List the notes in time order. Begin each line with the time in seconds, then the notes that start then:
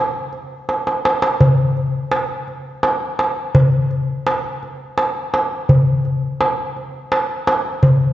0.33 darbuka ka
0.69 darbuka tek
0.87 darbuka ka
1.05 darbuka tek
1.22 darbuka ka
1.41 darbuka dum
1.77 darbuka ka
2.11 darbuka tek
2.48 darbuka ka
2.83 darbuka tek
3.19 darbuka tek
3.55 darbuka dum
3.91 darbuka ka
4.27 darbuka tek
4.63 darbuka ka
4.98 darbuka tek
5.34 darbuka tek
5.69 darbuka dum
6.05 darbuka ka
6.41 darbuka tek
6.76 darbuka ka
7.12 darbuka tek
7.47 darbuka tek
7.83 darbuka dum